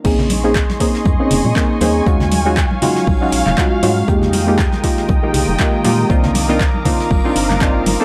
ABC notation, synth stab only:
X:1
M:4/4
L:1/16
Q:"Swing 16ths" 1/4=119
K:Bbm
V:1 name="Synth stab"
[B,CDEA]3 [B,CDEA] z2 [B,CDEA]3 [B,CDEA]3 [B,CDEA]2 [B,CDEA]2 | [A,DEFG]3 [A,DEFG] z2 [A,DEFG]3 [A,DEFG]3 [A,DEFG]2 [A,DEFG]2 | [A,B,EF=G]3 [A,B,EFG] z2 [A,B,EFG]3 [A,B,EFG]3 [A,B,EFG]2 [A,B,EFG]2 | [B,C=DEF]3 [B,CDEF] z2 [B,CDEF]3 [B,CDEF]3 [B,CDEF]3 [B,CDE=A] |]